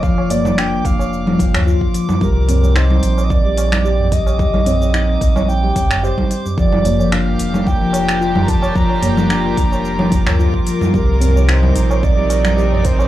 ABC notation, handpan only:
X:1
M:4/4
L:1/16
Q:"Swing 16ths" 1/4=110
K:Gm
V:1 name="Handpan" clef=bass
F, z B, F, D z4 F, z2 F z F,2 | G, z C G, E z4 G, z2 G z G,2 | G, z C G, E z4 G, z2 G z G,2 | F, z B, F, D z4 F, z2 F z F,2 |
F, z B, F, D z4 F, z2 F z F,2 | G, z C G, E z4 G, z2 G z G,2 |]